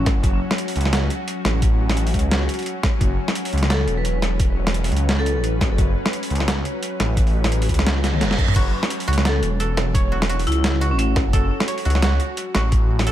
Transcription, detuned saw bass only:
Already playing: A1
0.16 F#1
0.75 C#2
1.45 A1
2.14 C#2
3.01 F#1
3.53 C#2
3.88 E1
4.91 C#2
5.36 A1
5.71 F#1
6.30 C#2
7.00 A1
7.69 C#2
8.21 F#1
8.38 F#2
8.56 F#1
9.08 C#2
9.43 E1
10.47 C#2
10.91 A1
11.26 F#1
11.85 C#2
12.55 A1

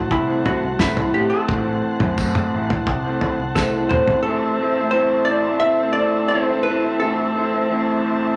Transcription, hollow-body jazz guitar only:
Already playing: F#4
0.12 E4
0.46 F#4
0.80 E4
1.14 G4
1.30 A4
3.55 A4
3.89 C5
4.23 A4
4.91 C5
5.25 D5
5.60 E5
5.93 D5
6.28 C5
6.63 B4
7.00 A4

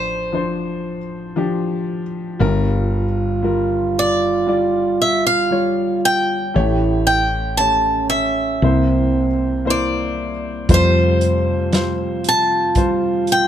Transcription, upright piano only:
Already playing: A1 A2 F3 D4 C5
0.32 F3 D4 C5
1.36 F3 D4 G4
2.40 G1 G2 G3 F4 A#4
3.42 G3 F4 A#4
4.46 G3 F4 D5
5.50 G3 F4 C#5
6.54 A1 A2 A3 G4 C#5
7.58 A3 G4 C#5
8.62 C2 C3 A#3 E4 C5
9.65 A#3 E4 C5
10.69 F1 F2 G3 F4 C5
11.73 G3 F4 C5
12.76 G3 F4 C5

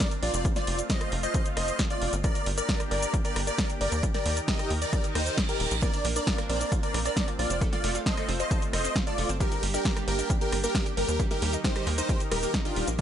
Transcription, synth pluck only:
5.82 A#3
5.94 D4
6.05 A#3
6.16 D4
6.27 F4
6.38 A#3
6.49 C4
6.61 D4
6.72 F4
6.94 A#3
7.05 C4
7.17 D4
7.28 F4
7.39 A#3
7.50 C4
7.61 A3
7.73 F4
7.84 A3
7.95 F4
8.06 A4
8.17 A3
8.29 C4
8.40 F4
8.51 A4
8.73 A3
8.85 C4
8.96 F4
9.07 A4
9.18 A3
9.29 C4
9.41 G3
9.52 D4
9.63 G3
9.74 D4
9.85 G4
9.96 G3
10.08 A#3
10.19 D4
10.30 G4
10.52 G3
10.64 A#3
10.75 D4
10.86 G4
10.97 G3
11.09 A#3
11.20 G3
11.31 D#4
11.42 G3
11.53 D#4
11.64 G4
11.76 G3
11.87 A#3
11.98 D#4
12.09 G4
12.32 G3
12.43 A#3
12.54 D#4
12.65 G4
12.77 G3
12.88 A#3

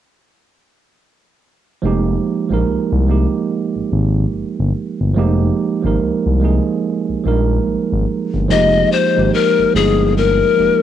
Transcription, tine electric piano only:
1.82 F3 G#3 A#3 D#4
1.86 G4
2.49 F3 G#3 A#3 D#4
2.54 A#4
3.07 F3 G#3 A#3 D#4
3.11 G4
5.15 F3 G#3 A#3 D#4
5.19 G4
5.82 F3 G#3 A#3 D#4
5.87 A#4
6.40 F3 G#3 A#3 D#4
6.45 G#4
7.24 F3 G3 A#3 D#4
7.28 G#3 A#4
8.48 F3 G#3 A#3 D#4
8.53 G4
9.15 F3 G#3 A#3 D#4
9.19 G4
9.73 F3 G#3 A#3 D#4
9.78 F4
10.56 F3 G#3 A#3 D#4
10.61 G4

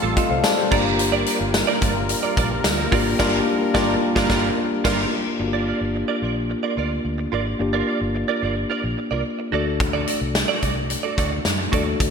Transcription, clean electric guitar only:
0.02 C4 F4 A4
0.16 C4 F4 A4
0.30 muted clean electric guitar stroke
0.58 muted clean electric guitar stroke
0.71 F4 A#4 D5
0.85 muted clean electric guitar stroke
0.99 muted clean electric guitar stroke
1.12 F4 A#4 D5
1.26 F4 A#4 D5
1.40 muted clean electric guitar stroke
1.54 muted clean electric guitar stroke
1.67 F4 A#4 D5
1.81 F4 A#4 D5
1.95 muted clean electric guitar stroke
2.09 muted clean electric guitar stroke
2.23 F4 A#4 D5
2.37 F4 A#4 D5
2.51 muted clean electric guitar stroke
2.78 muted clean electric guitar stroke
2.92 F4 A#4 D5
3.06 muted clean electric guitar stroke
3.19 F4 A#4 D5
3.74 F4 A#4 D5
4.15 F4 A#4 D5
4.29 F4 A#4 D5
4.84 F4 A#4 D5
5.39 muted clean electric guitar stroke
5.53 F4 A#4 D5
5.67 F4 A#4 D5
5.81 muted clean electric guitar stroke
5.95 muted clean electric guitar stroke
6.08 F4 A#4 D5
6.22 F4 A#4 D5
6.36 muted clean electric guitar stroke
6.50 muted clean electric guitar stroke
6.63 F4 A#4 D5
6.77 F4 A#4 D5
6.91 muted clean electric guitar stroke
7.18 muted clean electric guitar stroke
7.32 F4 A#4 D5
7.46 muted clean electric guitar stroke
7.59 muted clean electric guitar stroke
7.73 F4 A#4 D5
7.87 F4 A#4 D5
8.01 muted clean electric guitar stroke
8.15 muted clean electric guitar stroke
8.28 F4 A#4 D5
8.42 F4 A#4 D5
8.56 muted clean electric guitar stroke
8.70 F4 A#4 D5
8.84 muted clean electric guitar stroke
8.97 muted clean electric guitar stroke
9.11 F4 A#4 D5
9.39 muted clean electric guitar stroke
9.52 F#4 A4 D5
9.66 muted clean electric guitar stroke
9.80 muted clean electric guitar stroke
9.93 F#4 A4 D5
10.07 F#4 A4 D5
10.21 muted clean electric guitar stroke
10.35 muted clean electric guitar stroke
10.48 F#4 A4 D5
10.62 F#4 A4 D5
10.76 muted clean electric guitar stroke
10.90 muted clean electric guitar stroke
11.03 F#4 A4 D5
11.17 F#4 A4 D5
11.31 muted clean electric guitar stroke
11.58 muted clean electric guitar stroke
11.72 F#4 A4 D5
11.86 muted clean electric guitar stroke
11.99 muted clean electric guitar stroke

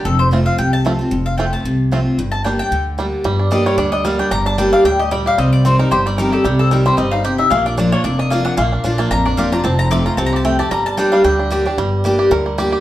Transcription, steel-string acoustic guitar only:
0.05 F2
0.31 F3 A3 C4 F4
0.58 C3
0.85 F3 A3 C4 F4
0.99 C4 F4
1.11 F2
1.38 F3 A3 C4 F4
1.65 C3
1.92 F3 A3 C4 F4
2.19 G2
2.45 G3 A#3 D4 G4
2.59 D4 G4
2.72 D3
2.98 G3 A#3 D4 G4
3.24 G2
3.51 G3 A#3 D4 G4
3.78 D3
4.05 G3 A#3 D4 G4
4.32 G2
4.58 G3 A#3 D4 G4
4.85 A2
5.11 A#2
5.38 C3
5.65 D#3 G3 C4 G4
5.92 G2
6.18 D#3 G3 C4 G4
6.45 C3
6.71 D#3 G3 C4 G4
6.86 C4 G4
6.98 G2
7.25 C3
7.51 A#2
7.77 F3 A#3 D4 F4
8.05 F2
8.31 F3 A#3 D4 F4
8.57 A#2
8.84 F3 A#3 D4 F4
9.12 F2
9.37 F3 A#3 D4 F4
9.52 D4 F4
9.64 F2
9.91 F3 A3 C4 F4
10.18 C3
10.45 F2
10.71 G2
10.97 G3 A#3 D4 G4
11.24 D3
11.50 G3 A#3 D4 G4
11.65 D4 G4
11.78 G2
12.04 G3 A#3 D4 G4
12.31 D3
12.58 G3 A#3 D4 G4

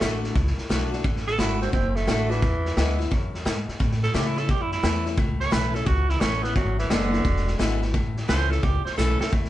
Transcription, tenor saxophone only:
Already playing: A3
1.27 A4
1.39 E4
1.61 C4
1.73 C4
1.95 A3
2.30 E3
4.03 A4
4.14 G4
4.26 E4
4.38 A4
4.50 G4
4.61 E4
4.72 E4
5.40 C#5
5.52 B4
5.75 A4
5.86 F#4
6.09 E4
6.20 C#4
6.43 B3
6.56 F#3
6.79 E3
6.90 D3
8.28 C5
8.50 A4
8.63 G4
8.85 C5
8.97 A4
9.20 A4

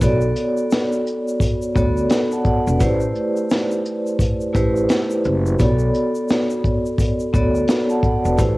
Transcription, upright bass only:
0.02 B1
1.76 D2
2.67 E1
2.81 A1
4.55 A1
5.25 F#1
5.60 B1
7.34 D2
8.25 E1
8.39 A1

